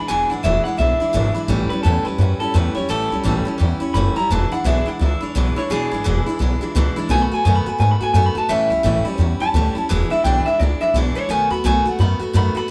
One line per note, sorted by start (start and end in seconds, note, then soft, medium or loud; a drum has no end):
0.08 0.24 E1 loud
0.08 0.30 E2 medium
0.08 0.31 B2 medium
0.08 0.31 E3 medium
0.08 0.31 G#3 medium
0.08 0.30 D4 medium
0.08 0.29 E4 medium
0.08 0.30 G#5 medium
0.30 0.40 G#1 medium
0.30 0.43 E3 medium
0.30 0.43 G#3 soft
0.30 0.44 D4 medium
0.30 0.44 E4 medium
0.30 0.43 F#5 medium
0.43 0.59 E1 loud
0.43 0.65 E2 medium
0.43 0.66 B2 medium
0.43 0.66 E3 medium
0.43 0.66 G#3 medium
0.43 0.65 D4 medium
0.43 0.64 E4 medium
0.43 0.64 E5 medium
0.64 0.77 G#3 soft
0.64 0.78 D4 soft
0.64 0.79 E4 medium
0.64 0.78 F#5 medium
0.64 muted upright bass stroke medium
0.69 0.76 E3 soft
0.77 0.94 B1 medium
0.77 1.00 E3 medium
0.77 1.01 G#3 medium
0.77 1.00 D4 medium
0.77 0.99 E4 medium
0.77 1.47 E5 medium
1.00 1.13 E3 soft
1.00 1.13 G#3 medium
1.00 1.14 D4 medium
1.00 1.14 E4 medium
1.13 1.29 G#1 medium
1.13 1.35 E2 medium
1.13 1.36 B2 medium
1.13 1.36 E3 medium
1.13 1.36 G#3 medium
1.13 1.35 D4 medium
1.13 1.33 E4 medium
1.35 1.47 E3 medium
1.35 1.49 G#3 medium
1.35 1.49 D4 medium
1.35 1.49 E4 medium
1.35 muted upright bass stroke medium
1.48 1.63 A1 medium
1.48 1.70 A2 medium
1.48 1.71 E3 loud
1.48 1.71 G3 medium
1.48 1.70 C#4 medium
1.48 1.69 E4 medium
1.69 1.83 G3 soft
1.69 1.84 C#4 medium
1.69 1.84 E4 medium
1.69 1.82 B4 loud
1.69 muted upright bass stroke medium
1.83 1.99 E2 medium
1.83 2.06 A2 medium
1.83 2.06 E3 medium
1.83 2.06 G3 medium
1.83 2.06 C#4 medium
1.83 2.04 E4 medium
1.83 2.05 A4 loud
2.05 2.18 G3 soft
2.05 2.20 C#4 soft
2.05 2.19 E4 medium
2.05 2.39 B4 medium
2.05 muted upright bass stroke medium
2.18 2.33 F#2 medium
2.18 2.41 E3 medium
2.18 2.41 G3 medium
2.18 2.40 C#4 medium
2.18 2.39 E4 medium
2.40 2.54 G3 medium
2.40 2.55 C#4 soft
2.40 2.54 E4 medium
2.40 2.55 A4 medium
2.40 muted upright bass stroke medium
2.54 2.69 E2 medium
2.54 2.76 A2 medium
2.54 2.76 E3 medium
2.54 2.76 G3 medium
2.54 2.76 C#4 medium
2.54 2.73 E4 medium
2.54 2.75 B4 loud
2.75 2.88 G3 medium
2.75 2.89 C#4 soft
2.75 2.89 E4 medium
2.75 2.89 C#5 medium
2.75 muted upright bass stroke medium
2.89 3.04 A1 loud
2.89 3.11 A2 medium
2.89 3.11 E3 medium
2.89 3.11 G3 medium
2.89 3.11 C#4 medium
2.89 3.09 E4 medium
2.89 3.58 A4 loud
3.10 3.21 C#2 medium
3.10 3.24 G3 soft
3.10 3.24 C#4 soft
3.10 3.24 E4 medium
3.24 3.40 A1 medium
3.24 3.46 A2 medium
3.24 3.46 E3 medium
3.24 3.46 G3 medium
3.24 3.45 C#4 medium
3.24 3.44 E4 medium
3.45 3.58 G3 medium
3.45 3.59 C#4 medium
3.45 3.59 E4 medium
3.45 muted upright bass stroke medium
3.58 3.75 E2 medium
3.58 3.80 E3 medium
3.58 3.81 G3 medium
3.58 3.80 C#4 medium
3.58 3.79 E4 medium
3.80 3.94 G3 soft
3.80 3.95 C#4 medium
3.80 3.94 E4 medium
3.80 muted upright bass stroke medium
3.94 4.09 F#1 loud
3.94 4.16 A2 medium
3.94 4.17 E3 medium
3.94 4.17 G3 medium
3.94 4.17 C#4 medium
3.94 4.15 E4 medium
3.94 4.15 B5 loud
4.16 4.31 G3 medium
4.16 4.31 C#4 soft
4.16 4.30 E4 medium
4.16 4.31 A#5 medium
4.30 4.45 E1 loud
4.30 4.52 E2 medium
4.30 4.52 B2 medium
4.30 4.52 E3 medium
4.30 4.52 G#3 medium
4.30 4.52 D4 loud
4.30 4.50 E4 medium
4.30 4.51 A5 loud
4.52 4.64 E3 soft
4.52 4.65 G#3 soft
4.52 4.65 D4 medium
4.52 4.65 E4 medium
4.52 4.66 F#5 medium
4.52 muted upright bass stroke medium
4.64 4.79 B1 loud
4.64 4.86 E2 medium
4.64 4.87 B2 medium
4.64 4.87 E3 medium
4.64 4.87 G#3 medium
4.64 4.86 D4 medium
4.64 4.84 E4 medium
4.64 4.88 E5 medium
4.86 4.98 E3 soft
4.86 5.00 G#3 soft
4.86 5.00 D4 medium
4.86 5.00 E4 medium
4.86 5.02 F#5 medium
4.86 muted upright bass stroke medium
4.99 5.15 C#2 medium
4.99 5.21 E3 medium
4.99 5.22 G#3 medium
4.99 5.21 D4 medium
4.99 5.19 E4 medium
4.99 5.23 E5 loud
5.21 5.35 E3 soft
5.21 5.35 G#3 soft
5.21 5.35 D4 medium
5.21 5.34 E4 medium
5.21 5.37 C#5 loud
5.21 muted upright bass stroke medium
5.35 5.50 B1 medium
5.35 5.56 E2 medium
5.35 5.57 B2 medium
5.35 5.57 E3 medium
5.35 5.57 G#3 medium
5.35 5.56 D4 medium
5.35 5.55 E4 medium
5.35 5.57 B4 loud
5.56 5.70 E3 soft
5.56 5.70 G#3 medium
5.56 5.70 D4 medium
5.56 5.70 E4 medium
5.56 5.70 C#5 medium
5.56 muted upright bass stroke medium
5.70 5.85 E1 loud
5.70 5.91 E2 medium
5.70 5.92 B2 medium
5.70 5.92 E3 medium
5.70 5.92 G#3 medium
5.70 5.92 D4 medium
5.70 5.90 E4 medium
5.70 6.72 G#4 loud
5.91 6.01 G#1 medium
5.91 6.04 E3 soft
5.91 6.05 G#3 medium
5.91 6.05 D4 medium
5.91 6.05 E4 medium
6.04 6.20 E1 medium
6.04 6.26 E2 medium
6.04 6.26 B2 medium
6.04 6.27 E3 medium
6.04 6.27 G#3 medium
6.04 6.26 D4 medium
6.04 6.25 E4 medium
6.26 6.38 E3 medium
6.26 6.39 G#3 medium
6.26 6.40 D4 soft
6.26 6.40 E4 medium
6.26 muted upright bass stroke medium
6.39 6.55 B1 medium
6.39 6.61 E3 medium
6.39 6.62 G#3 medium
6.39 6.61 D4 medium
6.39 6.60 E4 medium
6.61 6.75 E3 medium
6.61 6.75 G#3 medium
6.61 6.75 D4 medium
6.61 6.75 E4 medium
6.61 muted upright bass stroke medium
6.75 6.90 C#2 medium
6.75 6.96 E2 medium
6.75 6.97 B2 loud
6.75 6.97 E3 loud
6.75 6.97 G#3 medium
6.75 6.96 D4 medium
6.75 6.95 E4 medium
6.96 7.09 E3 medium
6.96 7.10 G#3 medium
6.96 7.10 D4 medium
6.96 7.10 E4 medium
6.96 muted upright bass stroke medium
7.09 7.24 B1 loud
7.09 7.31 B2 medium
7.09 7.31 D#3 medium
7.09 7.31 A3 loud
7.09 7.32 B3 medium
7.09 7.30 F#4 medium
7.09 7.22 G#5 loud
7.22 7.33 B5 medium
7.32 7.45 A3 soft
7.32 7.46 B3 medium
7.32 7.45 F#4 medium
7.32 7.43 G#5 medium
7.45 7.60 F#2 medium
7.45 7.66 B2 medium
7.45 7.67 D#3 medium
7.45 7.67 A3 medium
7.45 7.66 B3 medium
7.45 7.65 F#4 medium
7.45 7.55 G#5 loud
7.56 7.69 B5 medium
7.66 7.79 A3 soft
7.66 7.80 B3 medium
7.66 7.80 F#4 medium
7.66 7.79 G#5 medium
7.66 muted upright bass stroke medium
7.78 7.94 G#2 medium
7.78 8.01 D#3 medium
7.78 8.01 A3 medium
7.78 8.01 B3 medium
7.78 7.99 F#4 medium
7.78 7.91 G#5 medium
7.91 8.03 B5 loud
8.00 8.14 A3 medium
8.00 8.14 B3 medium
8.00 8.14 F#4 medium
8.00 8.12 G#5 medium
8.00 muted upright bass stroke medium
8.13 8.29 F#2 medium
8.13 8.36 B2 medium
8.13 8.36 D#3 medium
8.13 8.36 A3 medium
8.13 8.36 B3 medium
8.13 8.34 F#4 medium
8.13 8.25 G#5 loud
8.26 8.38 B5 loud
8.35 8.49 A3 soft
8.35 8.50 B3 medium
8.35 8.49 F#4 medium
8.35 8.49 A5 medium
8.35 muted upright bass stroke medium
8.49 8.64 A1 loud
8.49 8.71 A2 medium
8.49 8.71 E3 medium
8.49 8.71 G3 medium
8.49 8.71 C#4 medium
8.49 8.69 E4 loud
8.49 9.17 E5 loud
8.70 8.80 C#2 medium
8.70 8.83 G3 soft
8.70 8.84 C#4 medium
8.70 8.84 E4 medium
8.83 8.99 A1 medium
8.83 9.05 A2 medium
8.83 9.06 E3 medium
8.83 9.06 G3 medium
8.83 9.05 C#4 medium
8.83 9.04 E4 medium
9.05 9.18 G3 medium
9.05 9.19 C#4 medium
9.05 9.19 E4 medium
9.18 9.34 E2 medium
9.18 9.40 E3 medium
9.18 9.41 G3 medium
9.18 9.41 C#4 medium
9.18 9.39 E4 medium
9.40 9.55 G3 medium
9.40 9.55 C#4 medium
9.40 9.54 E4 medium
9.40 9.88 A5 loud
9.40 muted upright bass stroke medium
9.54 9.69 D2 loud
9.54 9.76 A2 medium
9.54 9.76 E3 medium
9.54 9.77 G3 medium
9.54 9.75 C#4 medium
9.54 9.74 E4 medium
9.75 9.90 G3 soft
9.75 9.90 C#4 medium
9.75 9.89 E4 medium
9.75 muted upright bass stroke medium
9.89 10.05 E1 loud
9.89 10.11 E2 medium
9.89 10.11 B2 medium
9.89 10.11 E3 medium
9.89 10.12 G#3 medium
9.89 10.11 D4 loud
9.89 10.09 E4 loud
10.10 10.24 E3 medium
10.10 10.24 G#3 medium
10.10 10.25 D4 medium
10.10 10.24 E4 medium
10.10 10.24 E5 loud
10.10 muted upright bass stroke medium
10.24 10.39 B1 medium
10.24 10.46 E2 medium
10.24 10.46 B2 medium
10.24 10.46 E3 medium
10.24 10.46 G#3 medium
10.24 10.46 D4 medium
10.24 10.45 E4 medium
10.24 10.45 G5 medium
10.46 10.58 E3 soft
10.46 10.60 G#3 soft
10.46 10.60 D4 medium
10.46 10.59 E4 medium
10.46 10.59 E5 loud
10.59 10.75 C#2 medium
10.59 10.81 E3 medium
10.59 10.82 G#3 medium
10.59 10.80 D4 medium
10.59 10.80 E4 medium
10.59 10.80 D5 medium
10.81 10.94 E3 soft
10.81 10.95 G#3 soft
10.81 10.95 D4 soft
10.81 10.94 E4 medium
10.81 10.94 E5 loud
10.94 11.09 B1 medium
10.94 11.16 E2 medium
10.94 11.17 B2 medium
10.94 11.17 E3 medium
10.94 11.16 G#3 medium
10.94 11.15 D4 medium
10.94 11.14 E4 medium
11.15 11.29 E3 medium
11.15 11.29 G#3 medium
11.15 11.30 D4 medium
11.15 11.29 E4 medium
11.15 11.29 C#5 loud
11.29 11.44 B1 loud
11.29 11.51 B2 medium
11.29 11.51 D#3 medium
11.29 11.51 A3 medium
11.29 11.51 B3 medium
11.29 11.49 F#4 loud
11.29 11.51 G#5 loud
11.50 11.60 D#2 medium
11.50 11.64 A3 soft
11.50 11.65 B3 soft
11.50 11.64 F#4 medium
11.50 11.64 B5 medium
11.64 11.79 B1 medium
11.64 11.86 B2 medium
11.64 11.86 D#3 medium
11.64 11.86 A3 medium
11.64 11.86 B3 medium
11.64 11.84 F#4 loud
11.64 11.87 G#5 medium
11.85 11.99 A3 soft
11.85 12.00 B3 medium
11.85 11.99 F#4 medium
11.85 12.00 F#5 medium
11.85 muted upright bass stroke medium
11.99 12.14 F#2 loud
11.99 12.20 D#3 medium
11.99 12.21 A3 medium
11.99 12.20 B3 medium
11.99 12.18 F#4 medium
11.99 12.21 B5 loud
12.20 12.33 A3 soft
12.20 12.34 B3 soft
12.20 12.34 F#4 medium
12.20 muted upright bass stroke medium
12.33 12.49 F#2 loud
12.33 12.55 B2 medium
12.33 12.56 D#3 medium
12.33 12.56 A3 medium
12.33 12.55 B3 medium
12.33 12.53 F#4 medium
12.33 12.56 B5 medium
12.55 12.69 A3 soft
12.55 12.70 B3 medium
12.55 12.69 F#4 medium
12.55 12.70 B5 loud
12.55 muted upright bass stroke medium